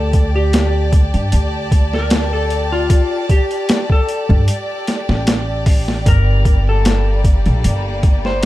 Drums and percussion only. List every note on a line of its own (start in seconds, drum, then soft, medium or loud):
0.13 kick medium
0.13 closed hi-hat medium
0.53 snare loud
0.53 closed hi-hat medium
0.93 kick loud
0.93 closed hi-hat medium
1.14 closed hi-hat soft
1.32 closed hi-hat loud
1.72 kick medium
1.72 closed hi-hat medium
1.93 snare soft
2.10 snare loud
2.10 closed hi-hat loud
2.50 closed hi-hat medium
2.90 kick loud
2.90 closed hi-hat medium
3.29 kick loud
3.29 closed hi-hat medium
3.51 closed hi-hat soft
3.69 snare loud
3.69 closed hi-hat medium
3.90 kick loud
4.09 closed hi-hat medium
4.29 kick loud
4.48 closed hi-hat medium
4.87 snare medium
4.87 closed hi-hat medium
5.09 snare soft
5.27 snare loud
5.27 closed hi-hat loud
5.66 kick loud
5.66 open hi-hat medium
5.88 snare soft
6.06 kick loud
6.06 closed hi-hat medium
6.45 kick medium
6.45 closed hi-hat medium
6.85 snare loud
6.85 closed hi-hat medium
7.24 kick loud
7.24 closed hi-hat medium
7.46 closed hi-hat soft
7.64 closed hi-hat medium
8.03 kick loud
8.03 closed hi-hat medium
8.25 snare soft